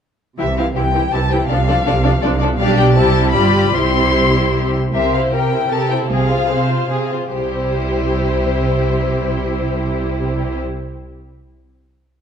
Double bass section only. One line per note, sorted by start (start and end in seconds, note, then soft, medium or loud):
0.40 0.72 C2 soft
0.77 1.09 C2 soft
1.14 1.46 C2 soft
1.50 1.82 C2 medium
1.87 2.19 C2 medium
2.23 2.55 C2 medium
2.59 2.94 B1 medium
2.96 3.34 C2 medium
3.34 3.74 G1 medium
3.74 4.72 C2 medium
4.94 5.26 C2 medium
6.09 6.42 C2 medium
7.32 10.59 C2 soft